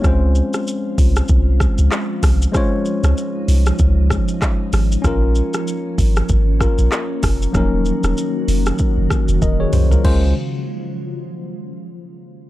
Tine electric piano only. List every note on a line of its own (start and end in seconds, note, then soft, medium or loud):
0.02 2.49 G#3 medium
0.02 2.50 C4 medium
0.02 2.50 C#4 medium
0.02 2.51 F4 medium
0.07 2.52 C5 medium
2.52 4.99 G#3 medium
2.52 5.00 C#4 medium
2.52 5.01 F4 medium
2.52 5.00 C5 medium
2.57 5.02 C#5 medium
5.02 6.56 C#4 medium
5.02 6.58 F4 medium
5.07 6.59 A#4 medium
6.59 7.53 C#4 medium
6.59 7.54 F4 medium
6.59 7.55 A#4 medium
7.52 7.61 F3 medium
7.52 10.00 A#3 medium
7.52 10.00 C#4 medium
7.52 10.01 D#4 medium
7.57 10.03 F#3 medium
7.57 9.40 A#4 medium
9.42 9.60 A#4 medium
9.42 9.59 D#5 medium
9.60 9.73 G#4 medium
9.60 9.73 C#5 medium
9.73 9.91 F#4 medium
9.73 9.90 C5 medium
9.91 10.03 F4 medium
9.91 10.21 A#4 medium
10.05 10.34 G#3 medium
10.05 10.34 C#4 medium
10.05 10.34 F4 medium
10.05 10.34 C5 loud